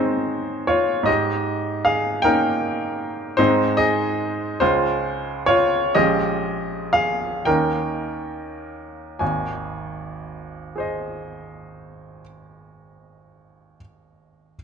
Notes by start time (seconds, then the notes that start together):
Already playing: G#2 G#3 C4 D#4 G#4 C5 C#5
0.67 F4 C#5
1.03 G#2 D#5
1.07 G4
1.85 G#4 F5
2.22 A#3 C#4 D#4 A#4 G5
3.37 G#2 G#3 C4 D#4 C5
3.77 G#4 D#5
4.60 C#2 G#3 C#4 F4 C5
5.46 F4 C#5
5.95 A#1 G#3 C#4 F4 G4 D#5
6.93 G#4 F5
7.45 D#2 A#3 C#4 D#4 A#4 G5
9.19 G#1 D#2 G#5
10.76 G#4 C5
10.80 D#5